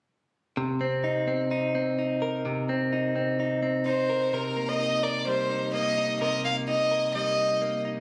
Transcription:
0.57 clean electric guitar C3
0.81 clean electric guitar C4
1.04 clean electric guitar D#4
1.28 clean electric guitar C4
1.51 clean electric guitar D#4
1.75 clean electric guitar C4
1.99 clean electric guitar D#4
2.22 clean electric guitar A#4
2.45 clean electric guitar C3
2.69 clean electric guitar C4
2.93 clean electric guitar D#4
3.16 clean electric guitar C4
3.40 clean electric guitar D#4
3.63 clean electric guitar C4
3.86 clean electric guitar D#4, violin C5
4.10 clean electric guitar A#4
4.33 clean electric guitar C3 A#4, violin A#4
4.57 clean electric guitar A#3
4.69 violin D#5
4.80 clean electric guitar D#4
5.03 clean electric guitar A#4, violin D5
5.27 clean electric guitar G3, violin C5
5.50 clean electric guitar D#4
5.74 clean electric guitar A#3, violin D#5
5.97 clean electric guitar D#4
6.21 clean electric guitar C3 A#4, violin D#5
6.45 clean electric guitar A#3, violin F5
6.68 clean electric guitar D#4, violin D#5
6.91 clean electric guitar A#4
7.15 clean electric guitar G3, violin D#5
7.39 clean electric guitar D#4
7.62 clean electric guitar A#3
7.85 clean electric guitar D#4

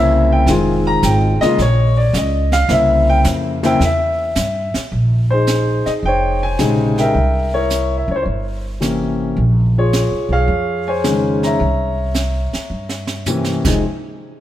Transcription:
Already playing: upright bass C2, grand piano C#3 A#3 C4 E4 E5
0.32 grand piano G5
0.46 upright bass F1, grand piano D#3 G#3 C4 F4 G#5, brush sweep, snare
0.87 grand piano A#5
1.03 upright bass G#1, grand piano G5, snare, hi-hat pedal
1.40 grand piano C#3 G#3 A#3 F4 D#5, muted upright bass stroke, snare
1.58 upright bass A#1, grand piano C#5, brush sweep, snare
1.97 grand piano D5
2.13 upright bass C#2, grand piano D#5, snare, hi-hat pedal
2.52 grand piano F5, snare
2.69 upright bass C2, grand piano C#3 A#3 C4 E4, brush sweep, snare
2.73 grand piano E5
3.09 grand piano G5
3.24 upright bass F2, snare, hi-hat pedal
3.63 grand piano C#3 A#3 C4 E4 G5, snare
3.80 upright bass E2, brush sweep, snare
3.85 grand piano E5
4.35 upright bass G2, snare, hi-hat pedal
4.74 muted upright bass stroke, snare
4.92 upright bass A#1, brush sweep
5.31 grand piano D#4 G#4 C5
5.47 snare, hi-hat pedal
5.86 grand piano D#5, muted upright bass stroke, snare
6.03 upright bass F1, grand piano G5, brush sweep
6.07 grand piano C5 C#5
6.43 grand piano G#5
6.59 upright bass A#1, grand piano C3 C#3 G#3 D#4 G#5, snare, hi-hat pedal
6.98 grand piano A#4 E5 G5, snare
7.14 upright bass C2, brush sweep
7.54 grand piano E4 A#4 C#5
7.70 snare, hi-hat pedal
7.98 grand piano E5
8.08 upright bass C#2, grand piano C#5
8.16 grand piano C5
8.22 upright bass G1, grand piano C#5, brush sweep
8.80 grand piano C3 E3 A#3 C#4, snare, hi-hat pedal
9.36 upright bass A#1, brush sweep
9.78 grand piano F4 G#4 C#5
9.93 snare, hi-hat pedal
10.11 upright bass C2
10.29 upright bass B1, grand piano G#4 C#5 F5
10.48 upright bass F2, brush sweep
10.88 grand piano C5 C#5 G#5
11.04 grand piano C#3 D#3 G#3 C#4, snare, hi-hat pedal
11.43 grand piano C#5 E5 A#5, snare
11.60 upright bass C2, brush sweep
12.14 snare, hi-hat pedal
12.53 muted upright bass stroke, snare
12.70 upright bass G2
12.89 snare
13.07 snare
13.26 grand piano C3 E3 A#3 C#4, floor tom, hi-hat pedal
13.44 snare
13.65 upright bass F1, grand piano C3 F3 G#3 D#4 G#5, kick, snare, crash

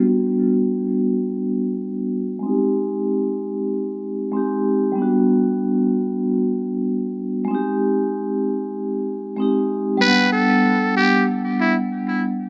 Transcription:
Already playing: vibraphone G3 B3 D4 F#4
2.39 vibraphone G#3 C4
2.46 vibraphone D#4 G4
4.32 vibraphone G#3 C4 D#4
4.37 vibraphone G4
4.92 vibraphone G3 B3
4.99 vibraphone D4 F#4
7.45 vibraphone G#3 C4
7.51 vibraphone D#4 G4
9.37 vibraphone G#3 C4 D#4
9.42 vibraphone G4
9.97 vibraphone G3 B3, muted trumpet B4
10.04 vibraphone D4 F#5
10.32 muted trumpet A4
10.97 muted trumpet G4
11.60 muted trumpet E4

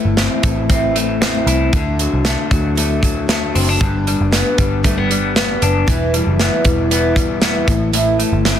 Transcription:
Already playing: clean electric guitar A2 E3, twelve-string acoustic guitar A3 C4 E4
0.05 picked electric bass G1
0.17 twelve-string acoustic guitar E3 A3 C4 E4, snare, closed hi-hat
0.43 picked electric bass A1, twelve-string acoustic guitar A3 C4 E4, kick, closed hi-hat
0.69 twelve-string acoustic guitar A2 E3 A3 C4 E4, kick, closed hi-hat
0.96 twelve-string acoustic guitar A3 C4 E4, closed hi-hat
1.22 twelve-string acoustic guitar E3 A3 C4 E4, snare, closed hi-hat
1.46 picked electric bass C2, twelve-string acoustic guitar A3 C4 E4, closed hi-hat
1.73 picked electric bass D2, twelve-string acoustic guitar D3 A3 D4 F#4, kick, closed hi-hat
1.99 clean electric guitar F#3, twelve-string acoustic guitar A3 D4 F#4, closed hi-hat
2.13 picked electric bass C2
2.24 twelve-string acoustic guitar D3 A3 D4 F#4, snare, closed hi-hat
2.50 picked electric bass D2, clean electric guitar F#3, twelve-string acoustic guitar A3 D4 F#4, kick, closed hi-hat
2.75 twelve-string acoustic guitar D3 A3 D4 F#4, closed hi-hat
3.01 clean electric guitar F#3, twelve-string acoustic guitar A3 D4 F#4, kick, closed hi-hat
3.27 twelve-string acoustic guitar D3 A3 D4 F#4, snare, closed hi-hat
3.52 picked electric bass F#1, twelve-string acoustic guitar A3 D4 F#4, clean electric guitar C4, open hi-hat
3.69 clean electric guitar D4
3.80 picked electric bass G1, twelve-string acoustic guitar G2 D3 G3 B3 D4 G4, kick, closed hi-hat
4.07 twelve-string acoustic guitar G3 B3 D4 G4, closed hi-hat
4.21 picked electric bass F#1
4.31 twelve-string acoustic guitar G3 B3 D4 G4, snare, closed hi-hat
4.57 picked electric bass G1, twelve-string acoustic guitar G3 B3 D4 G4, kick, closed hi-hat
4.83 twelve-string acoustic guitar G2 D3 G3 B3 D4 G4, clean electric guitar A3, kick, closed hi-hat
4.98 clean electric guitar B3
5.09 twelve-string acoustic guitar G3 B3 D4 G4, closed hi-hat
5.35 twelve-string acoustic guitar G3 B3 D4 G4, snare, closed hi-hat
5.61 picked electric bass F#1, twelve-string acoustic guitar G3 B3 D4 G4, closed hi-hat
5.86 picked electric bass E1, twelve-string acoustic guitar E2 B2 E3 G3 B3 E4, kick, closed hi-hat
6.13 twelve-string acoustic guitar E3 G3 B3 E4, closed hi-hat
6.27 picked electric bass F#1
6.39 twelve-string acoustic guitar E3 G3 B3 E4, snare, closed hi-hat
6.64 picked electric bass E1, twelve-string acoustic guitar E3 G3 B3 E4, kick, closed hi-hat
6.90 twelve-string acoustic guitar E2 B2 E3 G3 B3 E4, closed hi-hat
7.16 twelve-string acoustic guitar E3 G3 B3 E4, kick, closed hi-hat
7.40 twelve-string acoustic guitar E3 G3 B3 E4, snare, closed hi-hat
7.67 picked electric bass A1, clean electric guitar A2, twelve-string acoustic guitar A3 C4 E4, kick, closed hi-hat
7.92 twelve-string acoustic guitar A2 E3 A3 C4 E4, closed hi-hat
8.18 twelve-string acoustic guitar A3 C4 E4, closed hi-hat
8.32 picked electric bass G1
8.45 twelve-string acoustic guitar E3 A3 C4 E4, snare, closed hi-hat

